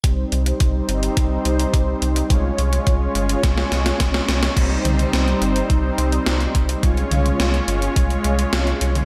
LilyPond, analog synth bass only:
\new Staff \with { instrumentName = "Analog synth bass" } { \clef bass \time 4/4 \key c \minor \tempo 4 = 106 c,8 c,8 c,8 g,,8 c,8 c,8 c,8 c,8 | c,8 c,8 c,8 g,,8 c,8 c,8 c,8 c,8 | c,8 c,8 c,8 g,,8 c,8 c,8 c,8 c,8 | c,8 c,8 c,8 g,,8 c,8 c,8 c,8 c,8 | }